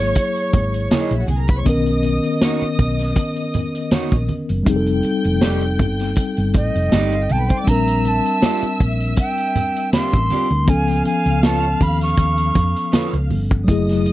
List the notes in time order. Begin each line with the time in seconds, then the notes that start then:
Already playing: G#1 F#3 A#3 E4 G#4 C#5 C#6
0.15 kick, closed hi-hat
0.36 closed hi-hat
0.53 G#1, kick, closed hi-hat, muted conga, low conga
0.74 closed hi-hat
0.91 A#3 E4 G#4 C#5, snare, closed hi-hat, high conga
1.00 D#4 D#5
1.11 A#1 E4 E5, closed hi-hat
1.19 F#4 F#5
1.28 C2 G#4 G#5, closed hi-hat, high conga
1.38 A#4 A#5
1.48 B4 B5, kick, closed hi-hat
1.57 C#5 C#6
1.63 B1 D3 B3 C#4 D#5 D#6, kick, closed hi-hat, muted conga
1.69 D#3 A#4
1.86 closed hi-hat
2.03 closed hi-hat, muted conga
2.24 closed hi-hat
2.41 A#3 D#4 F#4 C#5, snare, closed hi-hat, high conga
2.61 muted fingered electric bass stroke, closed hi-hat
2.79 B1, kick, closed hi-hat, low conga
2.99 snare, closed hi-hat
3.16 kick, closed hi-hat
3.36 closed hi-hat
3.54 closed hi-hat, muted conga, low conga
3.75 closed hi-hat
3.91 A#3 D#4 F#4 C#5, muted fingered electric bass stroke, snare, closed hi-hat, high conga
4.12 A#1, kick, closed hi-hat
4.28 closed hi-hat, high conga
4.49 F#1, closed hi-hat
4.63 F1 G3 C4 G5 G6, kick, closed hi-hat
4.67 D#4 G#4
4.76 A4
4.86 closed hi-hat
5.03 closed hi-hat, muted conga
5.24 F1, closed hi-hat
5.41 A3 D#4 G4 D5, snare, closed hi-hat, high conga
5.61 closed hi-hat
5.79 G1, kick, closed hi-hat, low conga
6.00 snare, closed hi-hat
6.16 kick, closed hi-hat
6.37 G1, closed hi-hat
6.54 A1 D#5, kick, closed hi-hat, muted conga, low conga
6.75 F1, closed hi-hat
6.92 G1 A3 D#4 G4 D5, snare, closed hi-hat, high conga
7.12 F4 F5, closed hi-hat
7.21 G4 G5
7.29 B1 A4 G5 A5, closed hi-hat, high conga
7.39 B4 B5
7.49 C5 C6, kick, closed hi-hat
7.58 D5 D6
7.64 A#1 G3 C4 E5 E6, kick, closed hi-hat
7.68 D4 A#4 A#5
7.87 closed hi-hat
8.04 A5, closed hi-hat, muted conga
8.25 closed hi-hat
8.42 C4 F4 G4 D5, snare, closed hi-hat, high conga
8.62 muted fingered electric bass stroke, closed hi-hat
8.80 A#1, kick, closed hi-hat, low conga
9.00 closed hi-hat
9.16 G5, kick, closed hi-hat
9.38 closed hi-hat
9.55 closed hi-hat, muted conga, low conga
9.76 closed hi-hat
9.93 C4 F4 G4 D5 C6, muted fingered electric bass stroke, snare, closed hi-hat, high conga
10.13 A1, kick, closed hi-hat
10.30 C4 F4 G4 D5, open hi-hat, high conga
10.50 D2, closed hi-hat
10.64 D#3 B3 F5 F6, kick, closed hi-hat
10.68 C#2 F3 C#4 A4 G#5
10.88 snare, closed hi-hat
11.05 G#5, closed hi-hat, muted conga
11.26 C#2, closed hi-hat
11.43 B3 F4 A4 C#5 A5, snare, closed hi-hat, high conga
11.63 closed hi-hat
11.81 D#2 B5, kick, closed hi-hat
12.01 C#6, snare, closed hi-hat
12.17 D#2, kick, closed hi-hat
12.38 closed hi-hat
12.55 F2, kick, closed hi-hat, muted conga, low conga
12.76 closed hi-hat
12.92 B3 F4 A4 C#5, snare, closed hi-hat, high conga
13.13 C#2, closed hi-hat
13.30 G1, open hi-hat, high conga
13.51 kick, closed hi-hat
13.64 F#1 F#3 A3 D#5 D#6, kick
13.69 E4 G#4, closed hi-hat
13.89 snare, closed hi-hat
14.06 closed hi-hat, muted conga